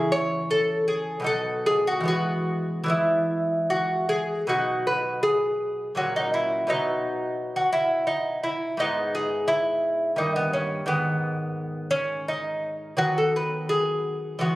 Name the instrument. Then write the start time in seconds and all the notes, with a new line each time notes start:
lute
Already playing: C#3 E3 E4 G#4
0.12 C#5
0.51 A4
0.88 G#4
1.20 B2 F#3
1.24 D#4 A4
1.66 G#4
1.87 F#4
2.00 E3 G#3
2.05 B3 F#4
2.84 E3 G#3
2.88 B3 E4
3.70 F#4
4.09 G#4
4.47 B2 F#3 D#4 F#4
4.87 B4
5.23 G#4
5.95 A#2 F#3 C#4 F#4
6.16 D#4
6.34 E4
6.67 B2 F#3 B3 D#4
7.56 F#4
7.73 E4
8.07 D#4
8.44 E4
8.77 G#2 G#3 B3 D#4
9.15 G#4
9.48 E4
10.16 G2 D#3 A#3 D#4
10.36 B3
10.53 C#4
10.86 G#2 D#3 B3
11.91 C#4
12.28 D#4
12.97 D#3 F#3 B3 F#4
13.18 A4
13.36 B4
13.69 G#4
14.39 E3 G#3 B3 F#4